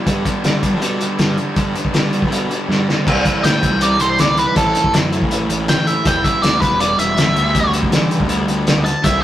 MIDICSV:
0, 0, Header, 1, 6, 480
1, 0, Start_track
1, 0, Tempo, 374065
1, 86, Time_signature, 4, 2, 24, 8
1, 11854, End_track
2, 0, Start_track
2, 0, Title_t, "Lead electric guitar"
2, 0, Program_c, 0, 29
2, 4419, Note_on_c, 0, 79, 80
2, 4882, Note_off_c, 0, 79, 0
2, 4906, Note_on_c, 0, 74, 72
2, 5133, Note_off_c, 0, 74, 0
2, 5140, Note_on_c, 0, 72, 64
2, 5370, Note_off_c, 0, 72, 0
2, 5394, Note_on_c, 0, 74, 70
2, 5617, Note_off_c, 0, 74, 0
2, 5627, Note_on_c, 0, 71, 75
2, 5853, Note_off_c, 0, 71, 0
2, 5864, Note_on_c, 0, 69, 93
2, 6324, Note_off_c, 0, 69, 0
2, 7301, Note_on_c, 0, 79, 86
2, 7533, Note_off_c, 0, 79, 0
2, 7533, Note_on_c, 0, 76, 89
2, 7765, Note_off_c, 0, 76, 0
2, 7794, Note_on_c, 0, 79, 88
2, 8011, Note_off_c, 0, 79, 0
2, 8011, Note_on_c, 0, 76, 77
2, 8239, Note_off_c, 0, 76, 0
2, 8239, Note_on_c, 0, 74, 80
2, 8477, Note_off_c, 0, 74, 0
2, 8482, Note_on_c, 0, 71, 71
2, 8718, Note_off_c, 0, 71, 0
2, 8729, Note_on_c, 0, 74, 72
2, 8965, Note_off_c, 0, 74, 0
2, 8965, Note_on_c, 0, 76, 88
2, 9897, Note_off_c, 0, 76, 0
2, 11353, Note_on_c, 0, 81, 90
2, 11592, Note_off_c, 0, 81, 0
2, 11601, Note_on_c, 0, 76, 80
2, 11826, Note_off_c, 0, 76, 0
2, 11854, End_track
3, 0, Start_track
3, 0, Title_t, "Overdriven electric guitar"
3, 0, Program_c, 1, 29
3, 9480, Note_on_c, 1, 62, 86
3, 11367, Note_off_c, 1, 62, 0
3, 11854, End_track
4, 0, Start_track
4, 0, Title_t, "Distorted electric guitar"
4, 0, Program_c, 2, 30
4, 81, Note_on_c, 2, 43, 81
4, 88, Note_on_c, 2, 50, 84
4, 93, Note_on_c, 2, 55, 81
4, 99, Note_on_c, 2, 59, 101
4, 101, Note_on_c, 2, 62, 87
4, 104, Note_on_c, 2, 67, 92
4, 312, Note_off_c, 2, 43, 0
4, 312, Note_off_c, 2, 50, 0
4, 317, Note_on_c, 2, 43, 78
4, 328, Note_on_c, 2, 50, 82
4, 330, Note_off_c, 2, 55, 0
4, 333, Note_off_c, 2, 59, 0
4, 335, Note_on_c, 2, 55, 75
4, 337, Note_off_c, 2, 62, 0
4, 337, Note_off_c, 2, 67, 0
4, 339, Note_on_c, 2, 59, 89
4, 342, Note_on_c, 2, 62, 87
4, 342, Note_on_c, 2, 67, 77
4, 545, Note_off_c, 2, 50, 0
4, 548, Note_off_c, 2, 43, 0
4, 554, Note_on_c, 2, 43, 76
4, 560, Note_on_c, 2, 50, 78
4, 563, Note_off_c, 2, 55, 0
4, 568, Note_on_c, 2, 55, 80
4, 569, Note_off_c, 2, 59, 0
4, 571, Note_off_c, 2, 62, 0
4, 574, Note_on_c, 2, 59, 71
4, 576, Note_on_c, 2, 62, 84
4, 577, Note_off_c, 2, 67, 0
4, 582, Note_on_c, 2, 67, 83
4, 800, Note_off_c, 2, 50, 0
4, 801, Note_off_c, 2, 43, 0
4, 807, Note_on_c, 2, 43, 72
4, 816, Note_off_c, 2, 55, 0
4, 816, Note_on_c, 2, 50, 72
4, 819, Note_off_c, 2, 59, 0
4, 821, Note_on_c, 2, 55, 80
4, 824, Note_on_c, 2, 59, 73
4, 826, Note_off_c, 2, 62, 0
4, 831, Note_on_c, 2, 62, 70
4, 832, Note_off_c, 2, 67, 0
4, 837, Note_on_c, 2, 67, 80
4, 1023, Note_off_c, 2, 43, 0
4, 1026, Note_off_c, 2, 50, 0
4, 1038, Note_on_c, 2, 43, 74
4, 1040, Note_off_c, 2, 59, 0
4, 1042, Note_on_c, 2, 50, 76
4, 1046, Note_off_c, 2, 62, 0
4, 1049, Note_off_c, 2, 55, 0
4, 1054, Note_on_c, 2, 55, 74
4, 1056, Note_on_c, 2, 59, 85
4, 1059, Note_off_c, 2, 67, 0
4, 1061, Note_on_c, 2, 62, 87
4, 1065, Note_on_c, 2, 67, 84
4, 1269, Note_off_c, 2, 43, 0
4, 1276, Note_off_c, 2, 50, 0
4, 1284, Note_off_c, 2, 59, 0
4, 1284, Note_on_c, 2, 43, 61
4, 1290, Note_off_c, 2, 55, 0
4, 1291, Note_off_c, 2, 62, 0
4, 1291, Note_on_c, 2, 50, 73
4, 1295, Note_on_c, 2, 55, 69
4, 1300, Note_on_c, 2, 59, 77
4, 1302, Note_off_c, 2, 67, 0
4, 1306, Note_on_c, 2, 62, 81
4, 1307, Note_on_c, 2, 67, 76
4, 1503, Note_off_c, 2, 43, 0
4, 1508, Note_off_c, 2, 50, 0
4, 1518, Note_on_c, 2, 43, 81
4, 1521, Note_off_c, 2, 59, 0
4, 1524, Note_on_c, 2, 50, 81
4, 1525, Note_off_c, 2, 62, 0
4, 1529, Note_off_c, 2, 55, 0
4, 1534, Note_on_c, 2, 55, 88
4, 1536, Note_on_c, 2, 59, 89
4, 1540, Note_on_c, 2, 62, 76
4, 1541, Note_off_c, 2, 67, 0
4, 1546, Note_on_c, 2, 67, 89
4, 1748, Note_off_c, 2, 50, 0
4, 1749, Note_off_c, 2, 43, 0
4, 1761, Note_off_c, 2, 59, 0
4, 1764, Note_on_c, 2, 43, 73
4, 1764, Note_on_c, 2, 50, 69
4, 1767, Note_off_c, 2, 55, 0
4, 1768, Note_off_c, 2, 62, 0
4, 1772, Note_on_c, 2, 55, 73
4, 1776, Note_on_c, 2, 59, 73
4, 1781, Note_off_c, 2, 67, 0
4, 1784, Note_on_c, 2, 62, 70
4, 1787, Note_on_c, 2, 67, 73
4, 1982, Note_off_c, 2, 43, 0
4, 1988, Note_off_c, 2, 50, 0
4, 1991, Note_off_c, 2, 55, 0
4, 1996, Note_off_c, 2, 59, 0
4, 1998, Note_on_c, 2, 43, 90
4, 2001, Note_off_c, 2, 62, 0
4, 2004, Note_off_c, 2, 67, 0
4, 2004, Note_on_c, 2, 50, 92
4, 2007, Note_on_c, 2, 55, 91
4, 2011, Note_on_c, 2, 59, 89
4, 2016, Note_on_c, 2, 62, 92
4, 2020, Note_on_c, 2, 67, 92
4, 2223, Note_off_c, 2, 43, 0
4, 2231, Note_off_c, 2, 50, 0
4, 2238, Note_off_c, 2, 55, 0
4, 2238, Note_on_c, 2, 43, 74
4, 2239, Note_off_c, 2, 59, 0
4, 2247, Note_on_c, 2, 50, 75
4, 2248, Note_off_c, 2, 62, 0
4, 2252, Note_off_c, 2, 67, 0
4, 2253, Note_on_c, 2, 55, 74
4, 2255, Note_on_c, 2, 59, 84
4, 2263, Note_on_c, 2, 62, 74
4, 2267, Note_on_c, 2, 67, 81
4, 2457, Note_off_c, 2, 43, 0
4, 2464, Note_off_c, 2, 50, 0
4, 2468, Note_off_c, 2, 55, 0
4, 2473, Note_off_c, 2, 59, 0
4, 2473, Note_on_c, 2, 43, 69
4, 2478, Note_off_c, 2, 62, 0
4, 2479, Note_on_c, 2, 50, 68
4, 2483, Note_on_c, 2, 55, 77
4, 2484, Note_off_c, 2, 67, 0
4, 2489, Note_on_c, 2, 59, 78
4, 2494, Note_on_c, 2, 62, 76
4, 2499, Note_on_c, 2, 67, 75
4, 2699, Note_off_c, 2, 43, 0
4, 2705, Note_off_c, 2, 50, 0
4, 2713, Note_off_c, 2, 55, 0
4, 2714, Note_on_c, 2, 43, 75
4, 2720, Note_off_c, 2, 59, 0
4, 2721, Note_on_c, 2, 50, 74
4, 2725, Note_off_c, 2, 62, 0
4, 2728, Note_on_c, 2, 55, 75
4, 2729, Note_off_c, 2, 67, 0
4, 2736, Note_on_c, 2, 59, 82
4, 2740, Note_on_c, 2, 62, 70
4, 2744, Note_on_c, 2, 67, 73
4, 2942, Note_off_c, 2, 43, 0
4, 2948, Note_off_c, 2, 50, 0
4, 2952, Note_off_c, 2, 55, 0
4, 2957, Note_on_c, 2, 43, 70
4, 2959, Note_off_c, 2, 59, 0
4, 2963, Note_on_c, 2, 50, 82
4, 2965, Note_off_c, 2, 62, 0
4, 2967, Note_on_c, 2, 55, 81
4, 2968, Note_off_c, 2, 67, 0
4, 2974, Note_on_c, 2, 59, 78
4, 2980, Note_on_c, 2, 62, 88
4, 2984, Note_on_c, 2, 67, 85
4, 3178, Note_off_c, 2, 43, 0
4, 3189, Note_off_c, 2, 50, 0
4, 3192, Note_off_c, 2, 55, 0
4, 3194, Note_on_c, 2, 43, 68
4, 3195, Note_off_c, 2, 59, 0
4, 3199, Note_off_c, 2, 62, 0
4, 3204, Note_on_c, 2, 50, 63
4, 3205, Note_off_c, 2, 67, 0
4, 3208, Note_on_c, 2, 55, 63
4, 3211, Note_on_c, 2, 59, 76
4, 3214, Note_on_c, 2, 62, 75
4, 3220, Note_on_c, 2, 67, 73
4, 3424, Note_off_c, 2, 43, 0
4, 3431, Note_off_c, 2, 50, 0
4, 3434, Note_off_c, 2, 55, 0
4, 3436, Note_off_c, 2, 59, 0
4, 3440, Note_on_c, 2, 43, 75
4, 3443, Note_off_c, 2, 62, 0
4, 3446, Note_on_c, 2, 50, 75
4, 3448, Note_off_c, 2, 67, 0
4, 3449, Note_on_c, 2, 55, 77
4, 3451, Note_on_c, 2, 59, 89
4, 3458, Note_on_c, 2, 62, 88
4, 3464, Note_on_c, 2, 67, 85
4, 3662, Note_off_c, 2, 43, 0
4, 3667, Note_off_c, 2, 50, 0
4, 3675, Note_off_c, 2, 55, 0
4, 3678, Note_on_c, 2, 43, 69
4, 3680, Note_off_c, 2, 59, 0
4, 3683, Note_on_c, 2, 50, 62
4, 3687, Note_off_c, 2, 62, 0
4, 3688, Note_off_c, 2, 67, 0
4, 3690, Note_on_c, 2, 55, 73
4, 3696, Note_on_c, 2, 59, 75
4, 3702, Note_on_c, 2, 62, 73
4, 3704, Note_on_c, 2, 67, 73
4, 3911, Note_off_c, 2, 50, 0
4, 3912, Note_off_c, 2, 43, 0
4, 3916, Note_on_c, 2, 48, 95
4, 3918, Note_off_c, 2, 55, 0
4, 3921, Note_off_c, 2, 59, 0
4, 3924, Note_off_c, 2, 62, 0
4, 3925, Note_off_c, 2, 67, 0
4, 3925, Note_on_c, 2, 52, 87
4, 3936, Note_on_c, 2, 55, 94
4, 3941, Note_on_c, 2, 60, 92
4, 3948, Note_on_c, 2, 64, 89
4, 4631, Note_off_c, 2, 48, 0
4, 4634, Note_off_c, 2, 64, 0
4, 4639, Note_off_c, 2, 60, 0
4, 4639, Note_on_c, 2, 64, 78
4, 4641, Note_off_c, 2, 55, 0
4, 4645, Note_on_c, 2, 60, 77
4, 4657, Note_off_c, 2, 52, 0
4, 4658, Note_on_c, 2, 55, 77
4, 4662, Note_on_c, 2, 52, 71
4, 4670, Note_on_c, 2, 48, 69
4, 5345, Note_off_c, 2, 48, 0
4, 5355, Note_off_c, 2, 60, 0
4, 5361, Note_on_c, 2, 48, 71
4, 5362, Note_off_c, 2, 55, 0
4, 5368, Note_off_c, 2, 52, 0
4, 5373, Note_on_c, 2, 52, 74
4, 5379, Note_on_c, 2, 55, 69
4, 5390, Note_on_c, 2, 60, 74
4, 5394, Note_off_c, 2, 64, 0
4, 5399, Note_on_c, 2, 64, 83
4, 5828, Note_off_c, 2, 48, 0
4, 5834, Note_on_c, 2, 45, 87
4, 5838, Note_off_c, 2, 52, 0
4, 5842, Note_off_c, 2, 55, 0
4, 5843, Note_on_c, 2, 52, 90
4, 5848, Note_off_c, 2, 60, 0
4, 5851, Note_on_c, 2, 57, 87
4, 5862, Note_on_c, 2, 60, 107
4, 5864, Note_off_c, 2, 64, 0
4, 5869, Note_on_c, 2, 64, 99
4, 6549, Note_off_c, 2, 45, 0
4, 6553, Note_off_c, 2, 64, 0
4, 6556, Note_off_c, 2, 60, 0
4, 6558, Note_off_c, 2, 57, 0
4, 6558, Note_on_c, 2, 64, 83
4, 6571, Note_on_c, 2, 60, 80
4, 6575, Note_on_c, 2, 57, 68
4, 6578, Note_off_c, 2, 52, 0
4, 6583, Note_on_c, 2, 52, 67
4, 6590, Note_on_c, 2, 45, 73
4, 7267, Note_off_c, 2, 45, 0
4, 7271, Note_off_c, 2, 64, 0
4, 7273, Note_off_c, 2, 52, 0
4, 7277, Note_off_c, 2, 60, 0
4, 7279, Note_off_c, 2, 57, 0
4, 7282, Note_on_c, 2, 45, 69
4, 7288, Note_on_c, 2, 52, 72
4, 7296, Note_on_c, 2, 57, 76
4, 7307, Note_on_c, 2, 60, 81
4, 7318, Note_on_c, 2, 64, 77
4, 7752, Note_off_c, 2, 45, 0
4, 7752, Note_on_c, 2, 40, 90
4, 7755, Note_off_c, 2, 52, 0
4, 7759, Note_off_c, 2, 57, 0
4, 7764, Note_on_c, 2, 47, 102
4, 7765, Note_off_c, 2, 60, 0
4, 7770, Note_off_c, 2, 64, 0
4, 7770, Note_on_c, 2, 52, 91
4, 7776, Note_on_c, 2, 55, 85
4, 7781, Note_on_c, 2, 59, 97
4, 7789, Note_on_c, 2, 64, 102
4, 8457, Note_off_c, 2, 64, 0
4, 8467, Note_off_c, 2, 40, 0
4, 8472, Note_off_c, 2, 47, 0
4, 8472, Note_on_c, 2, 64, 85
4, 8475, Note_off_c, 2, 52, 0
4, 8478, Note_off_c, 2, 59, 0
4, 8483, Note_on_c, 2, 59, 77
4, 8485, Note_off_c, 2, 55, 0
4, 8490, Note_on_c, 2, 55, 75
4, 8492, Note_on_c, 2, 52, 72
4, 8504, Note_on_c, 2, 47, 69
4, 8508, Note_on_c, 2, 40, 74
4, 9176, Note_off_c, 2, 40, 0
4, 9184, Note_off_c, 2, 47, 0
4, 9186, Note_off_c, 2, 64, 0
4, 9191, Note_off_c, 2, 59, 0
4, 9192, Note_on_c, 2, 40, 73
4, 9196, Note_off_c, 2, 52, 0
4, 9200, Note_on_c, 2, 47, 83
4, 9210, Note_on_c, 2, 52, 76
4, 9213, Note_off_c, 2, 55, 0
4, 9218, Note_on_c, 2, 55, 84
4, 9222, Note_on_c, 2, 59, 81
4, 9228, Note_on_c, 2, 64, 88
4, 9412, Note_off_c, 2, 52, 0
4, 9417, Note_on_c, 2, 50, 82
4, 9426, Note_off_c, 2, 40, 0
4, 9429, Note_off_c, 2, 55, 0
4, 9430, Note_off_c, 2, 47, 0
4, 9432, Note_off_c, 2, 59, 0
4, 9435, Note_on_c, 2, 55, 82
4, 9444, Note_off_c, 2, 64, 0
4, 9447, Note_on_c, 2, 59, 81
4, 9457, Note_on_c, 2, 67, 87
4, 10126, Note_off_c, 2, 50, 0
4, 10142, Note_on_c, 2, 50, 75
4, 10153, Note_off_c, 2, 59, 0
4, 10154, Note_off_c, 2, 55, 0
4, 10159, Note_on_c, 2, 55, 75
4, 10168, Note_on_c, 2, 59, 78
4, 10177, Note_off_c, 2, 67, 0
4, 10182, Note_on_c, 2, 67, 83
4, 10849, Note_off_c, 2, 67, 0
4, 10859, Note_off_c, 2, 50, 0
4, 10862, Note_off_c, 2, 59, 0
4, 10865, Note_on_c, 2, 67, 77
4, 10868, Note_off_c, 2, 55, 0
4, 10877, Note_on_c, 2, 59, 78
4, 10886, Note_on_c, 2, 55, 77
4, 10898, Note_on_c, 2, 50, 57
4, 11340, Note_off_c, 2, 67, 0
4, 11347, Note_off_c, 2, 59, 0
4, 11351, Note_off_c, 2, 55, 0
4, 11357, Note_off_c, 2, 50, 0
4, 11581, Note_on_c, 2, 48, 88
4, 11588, Note_on_c, 2, 52, 89
4, 11604, Note_on_c, 2, 55, 95
4, 11611, Note_on_c, 2, 60, 99
4, 11618, Note_on_c, 2, 64, 94
4, 11854, Note_off_c, 2, 48, 0
4, 11854, Note_off_c, 2, 52, 0
4, 11854, Note_off_c, 2, 55, 0
4, 11854, Note_off_c, 2, 60, 0
4, 11854, Note_off_c, 2, 64, 0
4, 11854, End_track
5, 0, Start_track
5, 0, Title_t, "Picked electric bass"
5, 0, Program_c, 3, 34
5, 84, Note_on_c, 3, 43, 88
5, 309, Note_off_c, 3, 43, 0
5, 567, Note_on_c, 3, 55, 82
5, 1047, Note_off_c, 3, 55, 0
5, 1047, Note_on_c, 3, 47, 82
5, 1272, Note_off_c, 3, 47, 0
5, 1529, Note_on_c, 3, 43, 92
5, 1753, Note_off_c, 3, 43, 0
5, 2007, Note_on_c, 3, 43, 81
5, 2233, Note_off_c, 3, 43, 0
5, 2491, Note_on_c, 3, 55, 73
5, 2973, Note_off_c, 3, 55, 0
5, 2973, Note_on_c, 3, 47, 78
5, 3197, Note_off_c, 3, 47, 0
5, 3447, Note_on_c, 3, 43, 85
5, 3674, Note_off_c, 3, 43, 0
5, 3938, Note_on_c, 3, 36, 90
5, 4160, Note_off_c, 3, 36, 0
5, 4413, Note_on_c, 3, 45, 87
5, 4749, Note_off_c, 3, 45, 0
5, 4772, Note_on_c, 3, 36, 77
5, 5108, Note_off_c, 3, 36, 0
5, 5127, Note_on_c, 3, 36, 93
5, 5466, Note_off_c, 3, 36, 0
5, 5489, Note_on_c, 3, 36, 79
5, 5715, Note_off_c, 3, 36, 0
5, 5854, Note_on_c, 3, 33, 96
5, 6077, Note_off_c, 3, 33, 0
5, 6332, Note_on_c, 3, 42, 88
5, 6668, Note_off_c, 3, 42, 0
5, 6698, Note_on_c, 3, 33, 74
5, 7031, Note_off_c, 3, 33, 0
5, 7045, Note_on_c, 3, 33, 88
5, 7384, Note_off_c, 3, 33, 0
5, 7406, Note_on_c, 3, 33, 85
5, 7632, Note_off_c, 3, 33, 0
5, 7768, Note_on_c, 3, 28, 89
5, 7993, Note_off_c, 3, 28, 0
5, 8253, Note_on_c, 3, 38, 87
5, 8587, Note_off_c, 3, 38, 0
5, 8614, Note_on_c, 3, 28, 78
5, 8947, Note_off_c, 3, 28, 0
5, 8962, Note_on_c, 3, 28, 88
5, 9300, Note_off_c, 3, 28, 0
5, 9332, Note_on_c, 3, 33, 86
5, 9438, Note_off_c, 3, 33, 0
5, 9445, Note_on_c, 3, 38, 95
5, 10116, Note_off_c, 3, 38, 0
5, 10160, Note_on_c, 3, 52, 92
5, 10498, Note_off_c, 3, 52, 0
5, 10525, Note_on_c, 3, 38, 80
5, 10861, Note_off_c, 3, 38, 0
5, 10882, Note_on_c, 3, 38, 92
5, 11219, Note_off_c, 3, 38, 0
5, 11241, Note_on_c, 3, 38, 83
5, 11466, Note_off_c, 3, 38, 0
5, 11599, Note_on_c, 3, 36, 94
5, 11825, Note_off_c, 3, 36, 0
5, 11854, End_track
6, 0, Start_track
6, 0, Title_t, "Drums"
6, 85, Note_on_c, 9, 36, 91
6, 86, Note_on_c, 9, 42, 77
6, 213, Note_off_c, 9, 36, 0
6, 215, Note_off_c, 9, 42, 0
6, 326, Note_on_c, 9, 36, 76
6, 329, Note_on_c, 9, 42, 59
6, 454, Note_off_c, 9, 36, 0
6, 457, Note_off_c, 9, 42, 0
6, 566, Note_on_c, 9, 42, 77
6, 579, Note_on_c, 9, 38, 95
6, 694, Note_off_c, 9, 42, 0
6, 707, Note_off_c, 9, 38, 0
6, 806, Note_on_c, 9, 36, 70
6, 806, Note_on_c, 9, 42, 58
6, 935, Note_off_c, 9, 36, 0
6, 935, Note_off_c, 9, 42, 0
6, 1050, Note_on_c, 9, 42, 82
6, 1178, Note_off_c, 9, 42, 0
6, 1292, Note_on_c, 9, 42, 58
6, 1420, Note_off_c, 9, 42, 0
6, 1522, Note_on_c, 9, 42, 70
6, 1535, Note_on_c, 9, 38, 98
6, 1651, Note_off_c, 9, 42, 0
6, 1664, Note_off_c, 9, 38, 0
6, 1765, Note_on_c, 9, 42, 46
6, 1894, Note_off_c, 9, 42, 0
6, 2004, Note_on_c, 9, 42, 65
6, 2008, Note_on_c, 9, 36, 99
6, 2133, Note_off_c, 9, 42, 0
6, 2137, Note_off_c, 9, 36, 0
6, 2252, Note_on_c, 9, 42, 53
6, 2370, Note_on_c, 9, 36, 62
6, 2380, Note_off_c, 9, 42, 0
6, 2488, Note_on_c, 9, 42, 71
6, 2498, Note_off_c, 9, 36, 0
6, 2500, Note_on_c, 9, 38, 95
6, 2616, Note_off_c, 9, 42, 0
6, 2629, Note_off_c, 9, 38, 0
6, 2732, Note_on_c, 9, 42, 51
6, 2852, Note_on_c, 9, 36, 73
6, 2860, Note_off_c, 9, 42, 0
6, 2979, Note_on_c, 9, 42, 70
6, 2980, Note_off_c, 9, 36, 0
6, 3108, Note_off_c, 9, 42, 0
6, 3218, Note_on_c, 9, 42, 53
6, 3347, Note_off_c, 9, 42, 0
6, 3476, Note_on_c, 9, 38, 48
6, 3604, Note_off_c, 9, 38, 0
6, 3711, Note_on_c, 9, 38, 64
6, 3840, Note_off_c, 9, 38, 0
6, 3937, Note_on_c, 9, 36, 96
6, 3943, Note_on_c, 9, 49, 104
6, 4065, Note_off_c, 9, 36, 0
6, 4072, Note_off_c, 9, 49, 0
6, 4175, Note_on_c, 9, 36, 76
6, 4176, Note_on_c, 9, 42, 69
6, 4304, Note_off_c, 9, 36, 0
6, 4305, Note_off_c, 9, 42, 0
6, 4418, Note_on_c, 9, 42, 95
6, 4431, Note_on_c, 9, 38, 101
6, 4546, Note_off_c, 9, 42, 0
6, 4559, Note_off_c, 9, 38, 0
6, 4656, Note_on_c, 9, 36, 72
6, 4658, Note_on_c, 9, 42, 64
6, 4785, Note_off_c, 9, 36, 0
6, 4786, Note_off_c, 9, 42, 0
6, 4889, Note_on_c, 9, 42, 96
6, 5017, Note_off_c, 9, 42, 0
6, 5128, Note_on_c, 9, 42, 65
6, 5256, Note_off_c, 9, 42, 0
6, 5373, Note_on_c, 9, 42, 89
6, 5386, Note_on_c, 9, 38, 94
6, 5501, Note_off_c, 9, 42, 0
6, 5514, Note_off_c, 9, 38, 0
6, 5612, Note_on_c, 9, 42, 62
6, 5741, Note_off_c, 9, 42, 0
6, 5852, Note_on_c, 9, 42, 87
6, 5855, Note_on_c, 9, 36, 96
6, 5980, Note_off_c, 9, 42, 0
6, 5983, Note_off_c, 9, 36, 0
6, 6093, Note_on_c, 9, 42, 66
6, 6214, Note_on_c, 9, 36, 74
6, 6221, Note_off_c, 9, 42, 0
6, 6335, Note_on_c, 9, 42, 85
6, 6342, Note_off_c, 9, 36, 0
6, 6348, Note_on_c, 9, 38, 106
6, 6463, Note_off_c, 9, 42, 0
6, 6476, Note_off_c, 9, 38, 0
6, 6577, Note_on_c, 9, 42, 63
6, 6695, Note_on_c, 9, 36, 84
6, 6705, Note_off_c, 9, 42, 0
6, 6815, Note_on_c, 9, 42, 84
6, 6823, Note_off_c, 9, 36, 0
6, 6943, Note_off_c, 9, 42, 0
6, 7055, Note_on_c, 9, 42, 66
6, 7183, Note_off_c, 9, 42, 0
6, 7293, Note_on_c, 9, 42, 87
6, 7306, Note_on_c, 9, 38, 111
6, 7421, Note_off_c, 9, 42, 0
6, 7434, Note_off_c, 9, 38, 0
6, 7536, Note_on_c, 9, 42, 65
6, 7665, Note_off_c, 9, 42, 0
6, 7768, Note_on_c, 9, 42, 93
6, 7771, Note_on_c, 9, 36, 110
6, 7896, Note_off_c, 9, 42, 0
6, 7899, Note_off_c, 9, 36, 0
6, 8012, Note_on_c, 9, 36, 86
6, 8016, Note_on_c, 9, 42, 72
6, 8140, Note_off_c, 9, 36, 0
6, 8144, Note_off_c, 9, 42, 0
6, 8256, Note_on_c, 9, 42, 96
6, 8268, Note_on_c, 9, 38, 116
6, 8384, Note_off_c, 9, 42, 0
6, 8397, Note_off_c, 9, 38, 0
6, 8492, Note_on_c, 9, 36, 78
6, 8496, Note_on_c, 9, 42, 70
6, 8620, Note_off_c, 9, 36, 0
6, 8624, Note_off_c, 9, 42, 0
6, 8731, Note_on_c, 9, 42, 91
6, 8859, Note_off_c, 9, 42, 0
6, 8969, Note_on_c, 9, 42, 66
6, 9097, Note_off_c, 9, 42, 0
6, 9207, Note_on_c, 9, 42, 92
6, 9220, Note_on_c, 9, 38, 107
6, 9335, Note_off_c, 9, 42, 0
6, 9348, Note_off_c, 9, 38, 0
6, 9449, Note_on_c, 9, 42, 63
6, 9578, Note_off_c, 9, 42, 0
6, 9686, Note_on_c, 9, 42, 85
6, 9687, Note_on_c, 9, 36, 97
6, 9815, Note_off_c, 9, 36, 0
6, 9815, Note_off_c, 9, 42, 0
6, 9924, Note_on_c, 9, 42, 68
6, 10046, Note_on_c, 9, 36, 74
6, 10053, Note_off_c, 9, 42, 0
6, 10167, Note_on_c, 9, 42, 86
6, 10174, Note_off_c, 9, 36, 0
6, 10179, Note_on_c, 9, 38, 112
6, 10295, Note_off_c, 9, 42, 0
6, 10308, Note_off_c, 9, 38, 0
6, 10409, Note_on_c, 9, 42, 64
6, 10523, Note_on_c, 9, 36, 83
6, 10537, Note_off_c, 9, 42, 0
6, 10638, Note_on_c, 9, 42, 85
6, 10651, Note_off_c, 9, 36, 0
6, 10766, Note_off_c, 9, 42, 0
6, 10885, Note_on_c, 9, 42, 66
6, 11014, Note_off_c, 9, 42, 0
6, 11124, Note_on_c, 9, 42, 78
6, 11137, Note_on_c, 9, 38, 104
6, 11253, Note_off_c, 9, 42, 0
6, 11265, Note_off_c, 9, 38, 0
6, 11367, Note_on_c, 9, 42, 60
6, 11495, Note_off_c, 9, 42, 0
6, 11600, Note_on_c, 9, 42, 89
6, 11601, Note_on_c, 9, 36, 107
6, 11728, Note_off_c, 9, 42, 0
6, 11729, Note_off_c, 9, 36, 0
6, 11854, End_track
0, 0, End_of_file